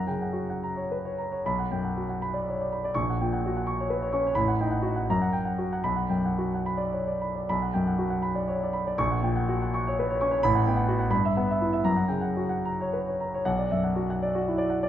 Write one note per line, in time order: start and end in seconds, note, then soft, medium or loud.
0.00 1.38 F#2 soft
0.00 0.16 F#5 soft
0.07 0.52 C#3 soft
0.07 0.22 G5 soft
0.21 0.44 F#5 soft
0.33 0.57 F#4 soft
0.50 0.72 F#5 soft
0.63 0.85 A#5 soft
0.76 0.98 C#5 soft
0.91 1.05 B4 soft
1.05 1.26 C#5 soft
1.18 1.39 A#5 soft
1.32 1.44 C#5 soft
1.46 2.91 B1 soft
1.46 1.65 B5 medium
1.59 1.78 F#5 soft
1.71 2.10 F#2 soft
1.71 1.83 G5 soft
1.84 2.03 F#5 soft
1.97 2.16 F#4 soft
2.09 2.28 F#5 soft
2.22 2.41 B5 soft
2.34 2.53 D5 soft
2.48 2.59 C#5 soft
2.61 2.79 D5 soft
2.72 2.90 B5 soft
2.84 2.95 D5 soft
2.94 4.32 A#1 soft
2.94 3.14 C#6 medium
3.09 3.27 F#5 soft
3.21 3.58 A#2 soft
3.21 3.32 G5 soft
3.33 3.50 F#5 soft
3.46 3.63 F#4 soft
3.57 3.74 F#5 soft
3.67 3.85 C#6 soft
3.80 3.97 C#5 soft
3.90 4.01 B4 soft
4.02 4.20 C#5 soft
4.13 4.36 C#4 soft
4.13 4.31 C#6 soft
4.27 4.37 C#5 soft
4.35 5.06 A1 soft
4.35 4.54 B5 medium
4.48 4.67 F#5 soft
4.61 4.99 D#4 soft
4.61 4.72 G5 soft
4.71 4.91 F#5 soft
4.82 5.03 F#4 soft
4.96 5.09 F#5 soft
5.10 5.83 F#2 soft
5.10 5.29 A#5 medium
5.22 5.41 F#5 soft
5.33 5.46 G5 soft
5.45 5.66 F#5 soft
5.58 5.79 F#4 soft
5.73 5.85 F#5 soft
5.84 7.43 B1 soft
5.84 6.06 B5 medium
5.96 6.19 F#5 soft
6.09 6.54 F#2 soft
6.09 6.24 G5 soft
6.25 6.47 F#5 soft
6.38 6.60 F#4 soft
6.54 6.75 F#5 soft
6.66 6.88 B5 soft
6.77 7.00 D5 soft
6.92 7.06 C#5 soft
7.07 7.29 D5 soft
7.21 7.43 B5 soft
7.35 7.48 D5 soft
7.49 8.94 B1 soft
7.49 7.69 B5 medium
7.62 7.81 F#5 soft
7.74 8.14 F#2 soft
7.74 7.86 G5 soft
7.87 8.06 F#5 soft
7.98 8.18 F#4 soft
8.10 8.30 F#5 soft
8.22 8.43 B5 soft
8.35 8.55 D5 soft
8.48 8.60 C#5 soft
8.63 8.81 D5 soft
8.73 8.93 B5 soft
8.87 8.98 D5 soft
8.98 10.38 A#1 medium
8.98 9.18 C#6 medium
9.11 9.31 F#5 soft
9.22 9.62 A#2 soft
9.22 9.35 G5 soft
9.36 9.55 F#5 soft
9.49 9.67 F#4 soft
9.62 9.80 F#5 soft
9.74 9.92 C#6 soft
9.87 10.04 C#5 soft
9.99 10.09 B4 soft
10.10 10.27 C#5 soft
10.21 10.43 C#4 soft
10.21 10.38 C#6 soft
10.31 10.42 C#5 soft
10.43 11.11 A1 medium
10.43 10.61 B5 medium
10.55 10.73 F#5 soft
10.67 11.03 B3 soft
10.67 10.78 G5 soft
10.76 10.95 F#5 soft
10.88 11.07 F#4 soft
10.99 11.11 F#5 soft
11.10 11.85 G2 soft
11.10 11.31 B5 medium
11.25 11.45 E5 soft
11.37 11.78 B3 soft
11.37 11.49 F#5 soft
11.51 11.70 E5 soft
11.61 11.82 E4 soft
11.73 11.87 E5 soft
11.84 13.40 F#2 soft
11.84 12.07 A#5 medium
11.96 12.20 F#5 soft
12.08 12.53 C#3 soft
12.08 12.24 G5 soft
12.21 12.45 F#5 soft
12.37 12.60 F#4 soft
12.49 12.73 F#5 soft
12.65 12.87 A#5 soft
12.81 13.02 C#5 soft
12.93 13.07 B4 soft
13.07 13.28 C#5 soft
13.20 13.41 A#5 soft
13.34 13.47 C#5 soft
13.45 14.88 B1 medium
13.45 13.66 F#5 medium
13.58 13.79 D5 soft
13.71 14.12 F#2 soft
13.71 13.84 E5 soft
13.84 14.05 F#5 soft
13.96 14.17 F#4 soft
14.10 14.30 F#5 soft
14.22 14.42 D5 soft
14.35 14.54 F#4 soft
14.48 14.59 E4 soft
14.58 14.77 D5 soft
14.70 14.88 F#5 soft
14.83 14.89 D5 medium